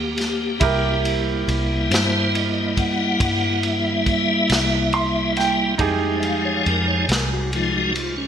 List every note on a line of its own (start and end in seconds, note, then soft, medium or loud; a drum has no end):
0.00 0.57 D#2 medium
0.00 0.59 A#3 medium
0.00 0.56 F4 medium
0.00 0.57 G4 soft
0.00 1.00 G4 medium
0.00 0.58 C#5 medium
0.18 snare soft
0.18 ride medium
0.60 1.43 C2 medium
0.60 5.75 G3 medium
0.60 5.75 A#3 soft
0.60 5.75 E4 medium
0.60 5.76 G4 medium
0.60 5.77 A#4 medium
0.60 kick loud
0.60 ride medium
1.05 ride medium
1.48 1.87 C2 medium
1.48 ride medium
1.90 3.16 G2 medium
1.90 2.33 C5 medium
1.90 snare loud
1.90 ride medium
2.35 2.77 D#5 medium
2.35 ride medium
2.77 3.61 F#5 medium
2.77 kick medium
2.77 ride medium
3.20 4.46 G2 medium
3.20 kick loud
3.20 ride medium
3.63 5.33 E5 medium
3.63 ride medium
4.06 kick medium
4.06 ride medium
4.49 5.75 C2 medium
4.49 snare loud
4.49 ride medium
4.93 5.34 C6 medium
4.93 ride medium
5.37 5.77 G5 medium
5.37 snare soft
5.37 ride medium
5.78 6.62 F2 medium
5.78 7.05 F3 soft
5.78 7.05 G#3 soft
5.78 8.27 D#4 medium
5.78 7.06 D#4 medium
5.78 8.27 G4 medium
5.78 8.27 G#4 medium
5.78 kick loud
5.78 ride medium
6.20 6.24 E5 medium
6.20 ride medium
6.24 6.43 F5 loud
6.45 6.65 C#5 medium
6.66 7.06 F2 medium
6.66 6.87 A#4 medium
6.66 ride medium
6.88 7.08 C#5 medium
7.09 8.27 C2 medium
7.09 7.30 A#4 medium
7.09 snare medium
7.09 ride medium
7.33 7.52 F#4 medium
7.53 7.93 F3 soft
7.53 7.93 G#3 soft
7.53 7.93 D#4 medium
7.53 7.74 F4 medium
7.53 ride medium
7.77 7.95 F#4 medium
7.96 8.17 F4 medium
7.96 ride medium
8.17 8.27 C#4 medium